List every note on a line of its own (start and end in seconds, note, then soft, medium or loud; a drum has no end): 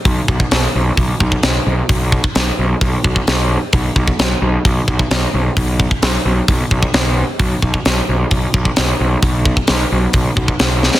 0.05 0.20 B1 medium
0.05 kick loud
0.05 open hi-hat medium
0.28 0.43 B1 medium
0.28 kick medium
0.40 kick medium
0.51 0.66 B1 medium
0.51 snare medium
0.51 open hi-hat medium
0.75 0.89 B1 medium
0.97 1.11 B1 medium
0.97 kick medium
0.97 open hi-hat medium
1.20 1.35 B1 medium
1.20 kick medium
1.32 kick medium
1.43 1.57 B1 medium
1.43 snare loud
1.43 open hi-hat medium
1.67 1.81 B1 medium
1.89 2.18 B1 medium
1.89 kick loud
1.89 open hi-hat medium
2.12 kick medium
2.24 kick medium
2.35 2.50 B1 medium
2.35 snare loud
2.35 open hi-hat soft
2.59 2.73 B1 medium
2.81 2.95 B1 medium
2.81 kick loud
2.81 open hi-hat soft
3.04 3.19 B1 medium
3.04 kick medium
3.16 kick medium
3.27 3.56 B1 medium
3.27 snare loud
3.27 open hi-hat soft
3.73 3.88 B1 medium
3.73 kick loud
3.73 open hi-hat medium
3.96 4.10 B1 medium
3.96 kick medium
4.08 kick medium
4.19 4.34 B1 medium
4.19 snare loud
4.19 open hi-hat soft
4.42 4.56 B1 medium
4.65 4.79 B1 medium
4.65 kick loud
4.65 open hi-hat soft
4.88 5.02 B1 medium
4.88 kick medium
4.99 kick medium
5.11 5.25 B1 medium
5.11 snare loud
5.11 open hi-hat medium
5.34 5.48 B1 medium
5.57 5.85 B1 medium
5.57 kick loud
5.57 open hi-hat medium
5.80 kick medium
5.91 kick medium
6.02 6.17 B1 medium
6.02 snare loud
6.02 open hi-hat medium
6.25 6.40 B1 medium
6.48 6.62 B1 medium
6.48 kick loud
6.48 open hi-hat medium
6.71 6.85 B1 medium
6.71 kick medium
6.83 kick medium
6.94 7.22 B1 medium
6.94 snare loud
6.94 open hi-hat soft
7.39 7.54 B1 medium
7.39 kick loud
7.39 open hi-hat medium
7.62 7.77 B1 medium
7.62 kick medium
7.74 kick medium
7.85 8.00 B1 medium
7.85 snare loud
7.85 open hi-hat medium
8.09 8.23 B1 medium
8.31 8.46 B1 medium
8.31 kick loud
8.31 open hi-hat soft
8.54 8.68 B1 medium
8.54 kick medium
8.65 kick medium
8.76 8.92 B1 medium
8.76 snare loud
8.76 open hi-hat medium
9.00 9.15 B1 medium
9.22 9.51 B1 medium
9.22 kick loud
9.22 open hi-hat medium
9.45 kick medium
9.57 kick medium
9.67 9.83 B1 medium
9.67 snare loud
9.67 open hi-hat medium
9.92 10.06 B1 medium
10.13 10.28 B1 medium
10.13 kick loud
10.13 open hi-hat medium
10.37 10.51 B1 medium
10.37 kick medium
10.48 kick medium
10.59 10.88 B1 medium
10.59 snare loud
10.59 open hi-hat soft
10.83 snare medium
10.94 snare medium